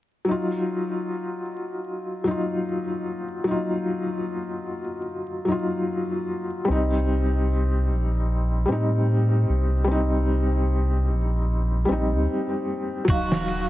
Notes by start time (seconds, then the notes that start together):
0.25 F#3 D#4
0.31 F4
2.24 F#3 D#4
2.31 F4
3.44 F#3 D#4
3.51 F4
5.45 F#3 D#4
5.52 F4
6.65 G3 C4
6.69 C2 D#4
7.89 A#1
8.65 A2 G3 C4
8.72 D#4
9.49 C2
9.84 G3 C4
9.91 D#4
11.09 A#1
11.85 G3 C4
11.89 A#1 D#4
12.12 D2
13.05 D#1 F#3 D#4, kick, ride
13.10 F#4 F5
13.32 snare
13.48 ride